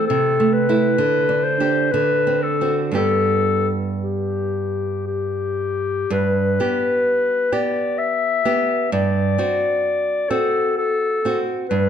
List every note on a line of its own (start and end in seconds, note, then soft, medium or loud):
0.07 0.95 C3 soft
0.07 0.54 A4 medium
0.40 0.68 A3 soft
0.52 1.45 B4 medium
0.69 0.95 A3 soft
0.69 0.95 E4 soft
0.98 1.90 D3 soft
1.29 1.59 D4 soft
1.43 1.93 C5 medium
1.60 1.90 D4 soft
1.60 1.90 G4 soft
1.91 2.94 D3 soft
1.91 2.44 B4 medium
2.27 2.60 C4 soft
2.42 2.80 A4 medium
2.61 2.93 C4 soft
2.61 2.93 F#4 soft
2.92 6.04 G2 soft
2.92 6.05 B3 soft
2.92 6.05 G4 soft
2.96 3.69 A4 medium
4.03 5.02 G4 soft
5.07 6.13 G4 medium
6.10 6.58 G2 medium
6.10 7.54 B4 medium
6.60 7.48 B3 soft
6.60 7.48 G4 soft
7.52 8.40 B3 soft
7.52 8.41 G4 soft
7.52 8.00 D5 medium
7.98 8.92 E5 medium
8.45 8.88 B3 soft
8.45 8.88 G4 soft
8.92 9.36 G2 medium
8.92 10.31 D5 medium
9.38 10.26 C4 soft
9.38 10.26 F#4 soft
10.30 11.20 C4 soft
10.30 11.20 F#4 soft
10.30 10.77 A4 medium
10.77 11.41 A4 medium
11.25 11.66 C4 soft
11.25 11.66 F#4 soft
11.69 11.89 G2 medium
11.69 11.89 B4 medium